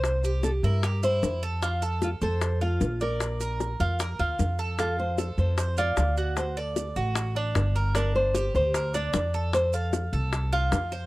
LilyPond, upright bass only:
\new Staff \with { instrumentName = "Upright bass" } { \clef bass \time 4/4 \key f \mixolydian \tempo 4 = 152 c,4. g,4. f,4~ | f,4. f,4. bes,,4~ | bes,,4. f,4 ees,8 f,4~ | f,4. f,4. d,4~ |
d,4. a,,4. g,,4~ | g,,4. d,4. f,4~ | f,4. c,4. f,4 | }